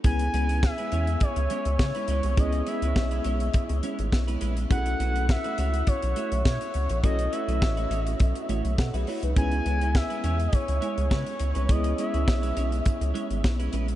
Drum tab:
HH |xxxx-xxxxxxx-xxx|xxxx-xxxxxxx-xxx|xxxx-xxxxxxx-xxx|xxxx-xxxxxxx-xox|
SD |----o-------o---|----o-------o---|----o-------o---|----o-------o---|
BD |o---o---o---o---|o---o---o---o---|o---o---o---o---|o---o---o---o---|

HH |xxxx-xxxxxxx-xxx|xxxx-xxxxxxx-xxx|
SD |----o-------o---|----o-------o---|
BD |o---o---o---o---|o---o---o---o---|